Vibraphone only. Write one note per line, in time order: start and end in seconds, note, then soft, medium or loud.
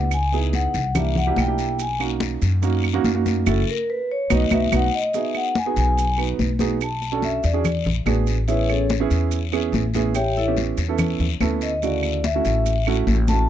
0.00 0.10 F#5 medium
0.14 0.33 G#5 medium
0.55 0.93 F#5 medium
0.97 1.17 E5 medium
1.18 1.38 F#5 medium
1.40 1.78 G5 medium
1.81 1.93 G#5 medium
3.49 3.68 A4 medium
3.70 3.89 A#4 medium
3.90 4.09 B4 medium
4.11 4.31 C#5 medium
4.33 4.52 D#5 medium
4.53 4.72 E5 medium
4.76 4.94 F#5 loud
4.95 5.14 D#5 loud
5.16 5.35 E5 medium
5.37 5.56 F#5 loud
5.58 5.77 G#5 medium
5.78 6.16 G#5 loud
6.83 7.21 A5 medium
7.24 7.44 E5 medium
7.44 7.83 D5 medium
8.48 8.69 E4 medium
8.48 8.69 B4 medium
8.48 8.68 C#5 medium
8.48 8.68 E5 medium
8.69 8.90 C#4 medium
8.69 8.90 G#4 medium
8.69 8.90 A4 medium
8.69 8.90 C#5 medium
10.15 10.36 G4 medium
10.15 10.36 C#5 medium
10.15 10.36 E5 medium
10.15 10.36 G5 medium
10.37 10.50 E4 medium
10.37 10.50 A4 medium
10.37 10.50 C#5 medium
10.37 10.50 E5 medium
11.62 11.82 D#5 medium
11.84 12.22 D5 medium
12.25 12.83 E5 medium
13.29 13.49 A5 loud